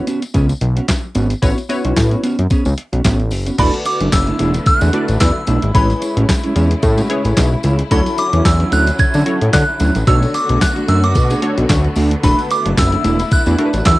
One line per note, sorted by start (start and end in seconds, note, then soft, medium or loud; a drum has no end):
0.07 0.23 B3 medium
0.07 0.22 C#4 medium
0.07 0.21 F#4 medium
0.07 closed hi-hat medium
0.07 tambourine soft
0.22 muted clean electric guitar stroke medium
0.22 closed hi-hat soft
0.22 tambourine soft
0.34 0.53 C#2 loud
0.34 0.50 B3 medium
0.34 0.49 C#4 medium
0.34 0.49 G#4 loud
0.34 kick loud
0.34 closed hi-hat medium
0.34 tambourine medium
0.49 muted clean electric guitar stroke soft
0.49 closed hi-hat soft
0.49 tambourine medium
0.61 0.80 B1 medium
0.61 muted clean electric guitar stroke soft
0.61 closed hi-hat medium
0.76 0.87 B3 medium
0.76 0.87 C#4 medium
0.76 0.86 F#4 medium
0.76 closed hi-hat soft
0.88 kick loud
0.88 snare loud
0.88 clap medium
0.88 closed hi-hat medium
0.88 tambourine medium
1.03 muted clean electric guitar stroke soft
1.15 1.34 G#1 medium
1.15 1.31 B3 medium
1.15 1.30 C#4 medium
1.15 1.29 F#4 medium
1.15 closed hi-hat medium
1.15 tambourine medium
1.30 muted clean electric guitar stroke soft
1.30 closed hi-hat medium
1.30 tambourine soft
1.42 1.53 A1 loud
1.42 1.58 B3 medium
1.42 1.57 C#4 medium
1.42 1.56 E4 medium
1.42 1.56 F#4 medium
1.42 1.57 B4 medium
1.42 1.57 C#5 loud
1.42 kick loud
1.42 closed hi-hat loud
1.42 tambourine medium
1.57 muted clean electric guitar stroke soft
1.57 closed hi-hat soft
1.57 tambourine soft
1.69 1.82 B3 medium
1.69 1.82 C#4 medium
1.69 2.21 E4 medium
1.69 2.21 F#4 medium
1.69 1.83 F#4 medium
1.69 2.21 B4 medium
1.69 2.21 C#5 loud
1.69 closed hi-hat medium
1.69 tambourine soft
1.84 1.93 B1 medium
1.84 1.95 B3 soft
1.84 1.95 C#4 medium
1.84 1.94 F#4 medium
1.84 closed hi-hat medium
1.96 2.15 A2 loud
1.96 kick loud
1.96 snare loud
1.96 clap medium
1.96 closed hi-hat medium
1.96 tambourine medium
2.11 2.22 B3 medium
2.11 2.22 C#4 medium
2.11 2.21 F#4 medium
2.11 closed hi-hat soft
2.23 2.39 B3 medium
2.23 2.38 C#4 medium
2.23 2.37 F#4 loud
2.23 closed hi-hat medium
2.23 tambourine soft
2.38 2.47 F#2 medium
2.38 muted clean electric guitar stroke soft
2.38 closed hi-hat soft
2.50 2.66 B3 medium
2.50 2.65 C#4 loud
2.50 2.65 G#4 medium
2.50 kick loud
2.50 closed hi-hat medium
2.50 tambourine soft
2.65 2.74 C#2 loud
2.65 muted clean electric guitar stroke soft
2.65 closed hi-hat soft
2.65 tambourine medium
2.77 muted clean electric guitar stroke soft
2.77 closed hi-hat medium
2.92 3.01 B1 medium
2.92 3.03 B3 medium
2.92 3.03 C#4 medium
2.92 3.02 F#4 medium
2.92 closed hi-hat soft
3.04 3.33 A1 loud
3.04 3.20 B3 medium
3.04 3.19 C#4 medium
3.04 3.18 F#4 medium
3.04 kick loud
3.04 snare loud
3.04 clap medium
3.04 closed hi-hat medium
3.04 tambourine medium
3.19 muted clean electric guitar stroke soft
3.19 closed hi-hat soft
3.31 3.50 F#1 medium
3.31 muted clean electric guitar stroke soft
3.31 open hi-hat medium
3.31 tambourine medium
3.46 3.57 B3 soft
3.46 3.57 C#4 soft
3.46 3.56 F#4 medium
3.46 closed hi-hat medium
3.46 tambourine soft
3.58 3.69 E1 loud
3.58 5.73 D3 medium
3.58 3.74 A3 medium
3.58 5.73 A3 medium
3.58 5.73 B3 medium
3.58 3.73 D4 medium
3.58 10.03 E4 medium
3.58 3.72 E4 medium
3.58 4.10 F#4 medium
3.58 4.10 A4 medium
3.58 4.10 B4 medium
3.58 4.10 D5 medium
3.58 3.71 B5 loud
3.58 kick loud
3.58 closed hi-hat medium
3.58 crash loud
3.58 tambourine medium
3.73 muted clean electric guitar stroke soft
3.73 closed hi-hat soft
3.85 4.14 D6 medium
3.85 muted clean electric guitar stroke soft
3.85 closed hi-hat medium
3.85 tambourine medium
4.00 4.09 F#1 medium
4.00 4.11 A3 soft
4.00 4.11 D4 medium
4.00 4.10 F#4 medium
4.00 closed hi-hat medium
4.12 4.31 F#1 loud
4.12 4.68 E6 loud
4.12 kick loud
4.12 snare loud
4.12 clap medium
4.12 closed hi-hat medium
4.12 tambourine loud
4.27 4.38 A3 medium
4.27 4.38 D4 medium
4.27 4.37 E4 medium
4.27 closed hi-hat soft
4.39 4.59 E1 medium
4.39 4.55 A3 medium
4.39 4.54 D4 medium
4.39 4.53 E4 loud
4.39 closed hi-hat medium
4.39 tambourine medium
4.54 muted clean electric guitar stroke medium
4.54 closed hi-hat medium
4.54 tambourine soft
4.66 4.73 E2 soft
4.66 5.23 F#6 loud
4.66 muted clean electric guitar stroke soft
4.66 kick loud
4.66 closed hi-hat medium
4.66 tambourine medium
4.81 4.90 E2 loud
4.81 4.92 A3 medium
4.81 4.93 D4 medium
4.81 4.94 F#4 medium
4.81 closed hi-hat soft
4.81 tambourine medium
4.93 5.06 A3 medium
4.93 5.06 D4 medium
4.93 5.07 E4 medium
4.93 5.34 F#4 medium
4.93 5.34 A4 medium
4.93 5.34 B4 medium
4.93 5.34 D5 medium
4.93 closed hi-hat medium
5.08 5.17 A1 loud
5.08 muted clean electric guitar stroke medium
5.08 closed hi-hat soft
5.08 tambourine soft
5.20 5.31 E2 loud
5.20 5.76 E6 loud
5.20 muted clean electric guitar stroke soft
5.20 kick loud
5.20 snare loud
5.20 clap medium
5.20 closed hi-hat medium
5.20 tambourine medium
5.35 muted clean electric guitar stroke medium
5.47 5.58 B1 loud
5.47 5.63 A3 medium
5.47 5.62 D4 medium
5.47 5.61 E4 medium
5.47 closed hi-hat medium
5.47 tambourine medium
5.62 5.71 G#1 medium
5.62 muted clean electric guitar stroke medium
5.62 closed hi-hat medium
5.74 5.94 A1 loud
5.74 7.89 C#3 medium
5.74 5.90 G#3 medium
5.74 7.89 G#3 medium
5.74 7.89 A3 medium
5.74 5.89 C#4 medium
5.74 6.26 E4 medium
5.74 5.88 E4 medium
5.74 6.26 G#4 medium
5.74 6.27 B4 medium
5.74 6.27 C#5 medium
5.74 6.79 B5 medium
5.74 kick loud
5.74 closed hi-hat loud
5.74 tambourine medium
5.89 muted clean electric guitar stroke soft
5.89 closed hi-hat soft
5.89 tambourine soft
6.02 muted clean electric guitar stroke soft
6.02 closed hi-hat medium
6.02 tambourine medium
6.16 6.25 A1 loud
6.16 6.27 G#3 soft
6.16 6.27 C#4 medium
6.16 6.27 F#4 medium
6.16 closed hi-hat medium
6.29 kick loud
6.29 snare loud
6.29 clap medium
6.29 closed hi-hat medium
6.29 tambourine loud
6.43 6.54 G#3 medium
6.43 6.54 C#4 medium
6.43 6.54 E4 medium
6.43 closed hi-hat soft
6.55 6.75 E2 loud
6.55 6.72 G#3 medium
6.55 6.71 C#4 medium
6.55 6.70 E4 medium
6.55 closed hi-hat medium
6.55 tambourine soft
6.71 muted clean electric guitar stroke soft
6.71 closed hi-hat medium
6.82 7.02 A2 loud
6.82 muted clean electric guitar stroke soft
6.82 kick loud
6.82 closed hi-hat medium
6.82 tambourine medium
6.97 7.08 G#3 medium
6.97 7.09 C#4 medium
6.97 7.11 F#4 medium
6.97 closed hi-hat soft
6.97 tambourine medium
7.10 7.22 G#3 medium
7.10 7.23 C#4 medium
7.10 7.50 E4 medium
7.10 7.23 E4 medium
7.10 7.50 G#4 medium
7.10 7.50 B4 medium
7.10 7.50 C#5 medium
7.10 closed hi-hat medium
7.25 7.33 A1 medium
7.25 closed hi-hat soft
7.25 tambourine soft
7.37 7.56 B1 loud
7.37 kick loud
7.37 snare loud
7.37 clap medium
7.37 closed hi-hat loud
7.37 tambourine medium
7.52 muted clean electric guitar stroke medium
7.63 7.83 C#2 medium
7.63 7.80 G#3 medium
7.63 7.79 C#4 medium
7.63 7.78 E4 medium
7.63 closed hi-hat medium
7.63 tambourine medium
7.79 muted clean electric guitar stroke soft
7.79 closed hi-hat medium
7.91 8.02 D2 loud
7.91 13.99 D3 medium
7.91 10.05 F#3 medium
7.91 8.07 F#3 medium
7.91 10.05 C#4 medium
7.91 8.06 C#4 medium
7.91 8.43 E4 medium
7.91 8.05 E4 medium
7.91 8.43 F#4 medium
7.91 8.43 A4 medium
7.91 8.43 C#5 medium
7.91 8.19 B5 loud
7.91 kick loud
7.91 closed hi-hat loud
7.91 tambourine medium
8.06 muted clean electric guitar stroke soft
8.06 closed hi-hat soft
8.06 tambourine soft
8.18 8.46 D6 loud
8.18 muted clean electric guitar stroke soft
8.18 closed hi-hat medium
8.18 tambourine soft
8.33 8.42 E2 loud
8.33 8.44 F#3 medium
8.33 8.43 C#4 medium
8.33 8.43 F#4 medium
8.33 closed hi-hat medium
8.45 8.64 E2 loud
8.45 8.73 E6 medium
8.45 muted clean electric guitar stroke soft
8.45 kick loud
8.45 snare loud
8.45 clap medium
8.45 closed hi-hat medium
8.45 tambourine loud
8.60 8.71 F#3 medium
8.60 8.70 C#4 medium
8.60 8.70 E4 medium
8.60 closed hi-hat soft
8.72 8.91 D2 loud
8.72 8.88 F#3 medium
8.72 8.87 C#4 medium
8.72 8.86 E4 medium
8.72 9.00 F#6 loud
8.72 closed hi-hat medium
8.72 tambourine soft
8.87 muted clean electric guitar stroke soft
8.87 closed hi-hat medium
8.87 tambourine soft
8.99 9.05 D3 soft
8.99 9.55 G#6 loud
8.99 muted clean electric guitar stroke soft
8.99 kick loud
8.99 closed hi-hat medium
8.99 tambourine medium
9.14 9.23 D3 loud
9.14 9.24 F#3 medium
9.14 9.25 C#4 medium
9.14 9.27 F#4 medium
9.14 closed hi-hat soft
9.14 tambourine medium
9.26 9.39 F#3 medium
9.26 9.39 C#4 medium
9.26 9.66 E4 medium
9.26 9.39 E4 medium
9.26 9.66 F#4 medium
9.26 9.66 A4 medium
9.26 9.66 C#5 medium
9.26 closed hi-hat medium
9.41 9.50 A2 medium
9.41 closed hi-hat medium
9.53 9.64 D3 loud
9.53 10.09 F#6 loud
9.53 kick loud
9.53 snare loud
9.53 clap medium
9.53 closed hi-hat loud
9.53 tambourine medium
9.68 muted clean electric guitar stroke soft
9.79 9.91 D2 loud
9.79 9.96 F#3 loud
9.79 9.95 C#4 medium
9.79 9.94 E4 loud
9.79 closed hi-hat medium
9.79 tambourine medium
9.95 10.04 A1 loud
9.95 muted clean electric guitar stroke soft
9.95 closed hi-hat medium
9.95 tambourine soft
10.07 10.26 B1 loud
10.07 10.23 A3 medium
10.07 13.99 A3 medium
10.07 13.99 B3 medium
10.07 10.59 D4 medium
10.07 10.22 D4 medium
10.07 12.21 F#4 medium
10.07 10.59 F#4 medium
10.07 10.21 F#4 loud
10.07 10.59 A4 medium
10.07 10.59 C#5 medium
10.07 10.35 E6 loud
10.07 kick loud
10.07 closed hi-hat loud
10.07 tambourine medium
10.22 muted clean electric guitar stroke medium
10.22 closed hi-hat soft
10.22 tambourine soft
10.34 10.60 D6 medium
10.34 muted clean electric guitar stroke soft
10.34 closed hi-hat medium
10.34 tambourine medium
10.49 10.58 B1 loud
10.49 10.60 A3 soft
10.49 10.60 D4 medium
10.49 10.59 G#4 medium
10.49 closed hi-hat medium
10.61 10.87 F#6 medium
10.61 kick loud
10.61 snare loud
10.61 clap medium
10.61 closed hi-hat medium
10.61 tambourine loud
10.76 10.87 A3 medium
10.76 10.87 D4 medium
10.76 10.86 F#4 medium
10.76 closed hi-hat soft
10.88 11.17 F#2 loud
10.88 11.04 A3 medium
10.88 11.03 D4 loud
10.88 11.02 F#4 loud
10.88 11.03 E6 medium
10.88 closed hi-hat medium
10.88 tambourine medium
11.03 11.54 D6 medium
11.03 muted clean electric guitar stroke soft
11.03 closed hi-hat medium
11.15 11.34 B2 loud
11.15 muted clean electric guitar stroke soft
11.15 kick loud
11.15 closed hi-hat medium
11.15 tambourine medium
11.30 11.41 A3 medium
11.30 11.42 D4 medium
11.30 11.43 G#4 medium
11.30 closed hi-hat soft
11.30 tambourine medium
11.42 11.55 A3 medium
11.42 11.82 D4 medium
11.42 11.55 D4 medium
11.42 11.82 F#4 medium
11.42 11.56 F#4 medium
11.42 11.82 A4 medium
11.42 11.83 C#5 medium
11.42 closed hi-hat medium
11.58 11.66 B1 medium
11.58 closed hi-hat medium
11.69 11.88 D2 loud
11.69 kick loud
11.69 snare loud
11.69 clap medium
11.69 closed hi-hat medium
11.69 tambourine medium
11.84 muted clean electric guitar stroke medium
11.84 closed hi-hat soft
11.96 12.15 D2 medium
11.96 12.12 A3 medium
11.96 12.11 D4 medium
11.96 12.10 F#4 loud
11.96 open hi-hat medium
11.96 tambourine medium
12.11 muted clean electric guitar stroke soft
12.11 closed hi-hat medium
12.23 12.34 E1 loud
12.23 12.39 A3 medium
12.23 12.75 D4 medium
12.23 12.38 D4 medium
12.23 13.99 E4 medium
12.23 12.37 E4 medium
12.23 12.75 F#4 medium
12.23 12.75 A4 medium
12.23 12.75 B4 medium
12.23 12.36 B5 loud
12.23 kick loud
12.23 closed hi-hat loud
12.23 tambourine medium
12.38 muted clean electric guitar stroke medium
12.38 closed hi-hat soft
12.38 tambourine soft
12.50 12.63 D6 loud
12.50 muted clean electric guitar stroke soft
12.50 closed hi-hat medium
12.50 tambourine medium
12.65 12.74 F#1 loud
12.65 12.76 A3 soft
12.65 12.76 D4 medium
12.65 12.75 F#4 medium
12.65 closed hi-hat medium
12.77 12.96 F#1 loud
12.77 13.34 E6 loud
12.77 muted clean electric guitar stroke soft
12.77 kick loud
12.77 snare loud
12.77 clap medium
12.77 closed hi-hat medium
12.77 tambourine loud
12.92 13.03 A3 medium
12.92 13.03 D4 medium
12.92 13.02 E4 medium
12.92 closed hi-hat soft
13.04 13.23 E1 loud
13.04 13.20 A3 medium
13.04 13.19 D4 medium
13.04 13.18 E4 medium
13.04 closed hi-hat medium
13.04 tambourine medium
13.19 muted clean electric guitar stroke soft
13.19 closed hi-hat medium
13.19 tambourine soft
13.31 13.38 E2 medium
13.31 13.88 F#6 loud
13.31 muted clean electric guitar stroke soft
13.31 kick loud
13.31 closed hi-hat medium
13.31 tambourine medium
13.46 13.55 E2 loud
13.46 13.57 A3 medium
13.46 13.58 D4 medium
13.46 13.59 F#4 medium
13.46 closed hi-hat soft
13.46 tambourine medium
13.58 13.71 A3 medium
13.58 13.98 D4 medium
13.58 13.72 D4 medium
13.58 13.72 E4 medium
13.58 13.98 F#4 medium
13.58 13.99 A4 medium
13.58 13.66 A#4 medium
13.58 closed hi-hat medium
13.66 13.99 B4 medium
13.73 13.82 A1 medium
13.73 muted clean electric guitar stroke soft
13.73 closed hi-hat medium
13.73 tambourine soft
13.85 13.96 E2 loud
13.85 13.99 E6 loud
13.85 kick loud
13.85 snare loud
13.85 clap medium
13.85 closed hi-hat loud
13.85 tambourine medium